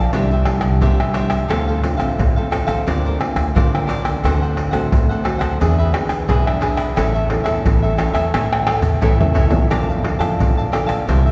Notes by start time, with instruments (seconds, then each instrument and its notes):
Already playing: nylon-string guitar F3, cavaquinho D5 F5 A5
0.13 upright bass C2, nylon-string guitar C3 G3 D4 E4, cavaquinho D4 G4 C5 E5, pandeiro, shaker, surdo
0.31 cavaquinho G4 C5 E5, pandeiro, shaker, surdo
0.45 nylon-string guitar G3 D4 E4, muted cavaquinho stroke, pandeiro, tamborim
0.61 upright bass C2, pandeiro, tamborim, shaker
0.81 upright bass C3, nylon-string guitar G3, cavaquinho D4 G4 C5 E5, pandeiro, shaker, surdo
1.00 nylon-string guitar G3 D4 E4, cavaquinho G4 C5 E5, pandeiro, tamborim, shaker
1.13 cavaquinho D4 G4 C5 E5, pandeiro, shaker
1.30 cavaquinho G4 C5 E5, pandeiro, tamborim, shaker, surdo
1.48 upright bass D2, nylon-string guitar D3 A3 C4 F4, cavaquinho D4 A4 C5 F5, pandeiro, tamborim, shaker, surdo
1.68 cavaquinho A4 C5 F5, pandeiro, shaker
1.82 nylon-string guitar A3 C4 F4, muted cavaquinho stroke, pandeiro, shaker
1.97 upright bass A1, nylon-string guitar A3 C4 F4, cavaquinho A4 C5 F5, pandeiro, tamborim, shaker, surdo
2.18 upright bass D2, nylon-string guitar A2, pandeiro, shaker, surdo
2.36 cavaquinho A4 C5 F5, pandeiro, shaker
2.51 nylon-string guitar A3 C4 F4, cavaquinho D4 A4 C5 F5, pandeiro, tamborim, shaker
2.67 upright bass A1, cavaquinho A4 C5 F5, pandeiro, tamborim, shaker, surdo
2.86 upright bass D2, nylon-string guitar D3 A#3 C4 F4, cavaquinho D4 A#4 C5 D5, pandeiro, shaker, surdo
3.05 cavaquinho A#4 C5 D5, pandeiro, shaker, surdo
3.20 nylon-string guitar A#3 C4 F4, muted cavaquinho stroke, pandeiro, tamborim
3.36 upright bass D2, pandeiro, tamborim, shaker
3.55 nylon-string guitar D3 A#3 C4 F4, upright bass D3, cavaquinho D4 A#4 C5 D5, pandeiro, shaker, surdo
3.73 nylon-string guitar A#3 C4 F4, cavaquinho A#4 C5 D5, pandeiro, tamborim, shaker
3.87 cavaquinho D4 A#4 C5 D5, pandeiro, shaker
4.03 cavaquinho A#4 C5 D5, pandeiro, tamborim, shaker, surdo
4.23 upright bass D2, nylon-string guitar D3 A3 C4 F#4, cavaquinho D4 A4 C5 F#5, pandeiro, tamborim, shaker, surdo
4.41 cavaquinho A4 C5 F#5, pandeiro, shaker
4.56 muted cavaquinho stroke, pandeiro
4.71 upright bass A1, nylon-string guitar A3 C4 F#4, cavaquinho A4 C5 F#5, pandeiro, tamborim, shaker, surdo
4.92 upright bass D2, nylon-string guitar A2, pandeiro, shaker, surdo
5.09 cavaquinho A4 C5 F#5, pandeiro, shaker
5.24 nylon-string guitar A3 C4 F#4, cavaquinho D4 A4 C5 F#5, pandeiro, tamborim
5.39 upright bass D2, cavaquinho A4 C5 F#5, pandeiro, tamborim, shaker, surdo
5.60 upright bass E2, nylon-string guitar E3 B3 D4 G#4, cavaquinho D4 G#4 B4 E5, pandeiro, shaker, surdo
5.78 cavaquinho G#4 B4 E5, pandeiro, shaker, surdo
5.93 nylon-string guitar B3 D4 G#4, muted cavaquinho stroke, pandeiro, tamborim
6.09 upright bass E2, pandeiro, tamborim, shaker
6.28 upright bass B1, nylon-string guitar B2, cavaquinho D4 G#4 B4 E5, pandeiro, shaker, surdo
6.46 nylon-string guitar B3 D4 G#4, cavaquinho G#4 B4 E5, pandeiro, tamborim, shaker
6.61 cavaquinho D4 G#4 B4 E5, pandeiro
6.76 cavaquinho G#4 B4 E5, pandeiro, tamborim, shaker, surdo
6.96 upright bass A1, nylon-string guitar A3 C#4 E4 A4, cavaquinho E4 A4 C#5 E5, pandeiro, tamborim, shaker, surdo
7.14 cavaquinho A4 C#5 E5, pandeiro, shaker
7.29 nylon-string guitar C#4 E4 A4, muted cavaquinho stroke, pandeiro
7.44 upright bass E2, nylon-string guitar C#4 E4 A4, cavaquinho A4 C#5 E5, pandeiro, tamborim, shaker, surdo
7.65 upright bass A1, nylon-string guitar E3, pandeiro, shaker, surdo
7.82 cavaquinho A4 C#5 E5, pandeiro, shaker
7.97 nylon-string guitar C#4 E4 A4, cavaquinho E4 A4 C#5 E5, pandeiro, tamborim, shaker
8.13 upright bass E2, cavaquinho A4 C#5 E5, pandeiro, tamborim, shaker, surdo
8.34 upright bass A2, nylon-string guitar A3, cavaquinho E4 A4 C#5 E5, pandeiro, tamborim, shaker, surdo
8.52 cavaquinho A4 C#5 E5, pandeiro, tamborim, shaker, surdo
8.67 nylon-string guitar C#4 E4 A4, muted cavaquinho stroke, pandeiro, tamborim
8.82 upright bass A1, surdo, pandeiro, shaker
9.01 upright bass A2, nylon-string guitar E3 C#4 E4 A4, cavaquinho E4 A4 C#5 E5, pandeiro, shaker, surdo
9.20 nylon-string guitar C#4 E4 A4, cavaquinho A4 C#5 E5, surdo, pandeiro, shaker
9.34 upright bass C#2, cavaquinho E4 A4 C#5 E5, pandeiro, surdo
9.49 upright bass A1, cavaquinho A4 C#5 E5, pandeiro, shaker, surdo
9.70 upright bass A#1, nylon-string guitar A#3 D4 F4 A4, cavaquinho A#4 D5 F5 A5, pandeiro, tamborim, shaker, surdo
9.89 cavaquinho D5 F5 A5, pandeiro, shaker
10.03 nylon-string guitar D4 F4 A4, muted cavaquinho stroke, pandeiro
10.18 upright bass F2, nylon-string guitar D4 F4 A4, cavaquinho D5 F5 A5, pandeiro, tamborim, shaker, surdo
10.39 upright bass A#1, nylon-string guitar F3, pandeiro, shaker, surdo
10.57 cavaquinho D5 F5 A5, pandeiro, shaker
10.72 nylon-string guitar D4 F4 A4, cavaquinho A#4 D5 F5 A5, pandeiro, tamborim, shaker
10.87 upright bass A#1, cavaquinho D5 F5 A5, pandeiro, tamborim, shaker, surdo
11.07 upright bass C2, nylon-string guitar C3 A#3 E4 G4, cavaquinho A#4 C5 E5, pandeiro, shaker, surdo
11.26 cavaquinho C5 E5, pandeiro, shaker, surdo